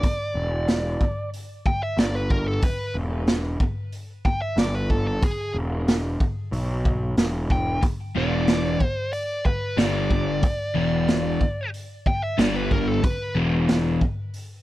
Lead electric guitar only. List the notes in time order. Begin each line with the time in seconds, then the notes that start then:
Already playing: D5
1.67 G5
1.83 E5
1.99 D5
2.15 B4
2.31 A#4
2.48 A4
2.64 B4
4.25 G5
4.42 E5
4.59 D5
4.75 B4
4.90 A4
5.07 A4
5.24 G#4
7.52 G5
8.17 D5
8.86 C5
9.13 D5
9.46 B4
9.79 D5
12.07 G5
12.23 E5
12.40 D5
12.56 B4
12.72 A#4
12.89 A4
13.05 B4